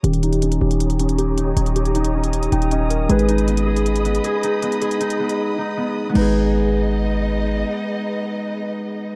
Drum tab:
CC |----------------|----------------|----------------|----------------|
HH |xxxxxx-xxxxxx-x-|xxxxxx-xxxxxx-x-|xxxxxx-xxxxxx-x-|xxxxxx-x--------|

CC |x---------------|----------------|
HH |----------------|----------------|